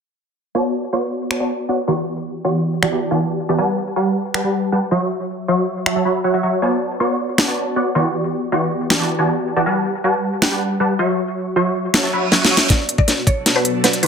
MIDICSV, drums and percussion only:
0, 0, Header, 1, 2, 480
1, 0, Start_track
1, 0, Tempo, 379747
1, 691, Time_signature, 4, 2, 24, 8
1, 17790, End_track
2, 0, Start_track
2, 0, Title_t, "Drums"
2, 1652, Note_on_c, 9, 26, 88
2, 1778, Note_off_c, 9, 26, 0
2, 3572, Note_on_c, 9, 26, 87
2, 3698, Note_off_c, 9, 26, 0
2, 5491, Note_on_c, 9, 26, 85
2, 5617, Note_off_c, 9, 26, 0
2, 7410, Note_on_c, 9, 26, 84
2, 7536, Note_off_c, 9, 26, 0
2, 9332, Note_on_c, 9, 26, 81
2, 9332, Note_on_c, 9, 38, 104
2, 9458, Note_off_c, 9, 26, 0
2, 9458, Note_off_c, 9, 38, 0
2, 11253, Note_on_c, 9, 26, 85
2, 11253, Note_on_c, 9, 38, 101
2, 11379, Note_off_c, 9, 26, 0
2, 11379, Note_off_c, 9, 38, 0
2, 13170, Note_on_c, 9, 26, 89
2, 13170, Note_on_c, 9, 38, 102
2, 13297, Note_off_c, 9, 26, 0
2, 13297, Note_off_c, 9, 38, 0
2, 15091, Note_on_c, 9, 26, 89
2, 15091, Note_on_c, 9, 38, 104
2, 15217, Note_off_c, 9, 26, 0
2, 15217, Note_off_c, 9, 38, 0
2, 15570, Note_on_c, 9, 38, 60
2, 15697, Note_off_c, 9, 38, 0
2, 15731, Note_on_c, 9, 38, 76
2, 15858, Note_off_c, 9, 38, 0
2, 15890, Note_on_c, 9, 38, 85
2, 16017, Note_off_c, 9, 38, 0
2, 16051, Note_on_c, 9, 36, 107
2, 16051, Note_on_c, 9, 38, 48
2, 16051, Note_on_c, 9, 42, 84
2, 16177, Note_off_c, 9, 36, 0
2, 16177, Note_off_c, 9, 38, 0
2, 16177, Note_off_c, 9, 42, 0
2, 16291, Note_on_c, 9, 42, 63
2, 16411, Note_on_c, 9, 36, 101
2, 16417, Note_off_c, 9, 42, 0
2, 16531, Note_on_c, 9, 38, 46
2, 16531, Note_on_c, 9, 42, 76
2, 16538, Note_off_c, 9, 36, 0
2, 16658, Note_off_c, 9, 38, 0
2, 16658, Note_off_c, 9, 42, 0
2, 16771, Note_on_c, 9, 36, 101
2, 16774, Note_on_c, 9, 42, 64
2, 16898, Note_off_c, 9, 36, 0
2, 16901, Note_off_c, 9, 42, 0
2, 17013, Note_on_c, 9, 38, 49
2, 17013, Note_on_c, 9, 42, 79
2, 17140, Note_off_c, 9, 38, 0
2, 17140, Note_off_c, 9, 42, 0
2, 17253, Note_on_c, 9, 42, 65
2, 17380, Note_off_c, 9, 42, 0
2, 17492, Note_on_c, 9, 38, 47
2, 17492, Note_on_c, 9, 42, 70
2, 17612, Note_off_c, 9, 42, 0
2, 17612, Note_on_c, 9, 42, 59
2, 17619, Note_off_c, 9, 38, 0
2, 17733, Note_off_c, 9, 42, 0
2, 17733, Note_on_c, 9, 42, 49
2, 17790, Note_off_c, 9, 42, 0
2, 17790, End_track
0, 0, End_of_file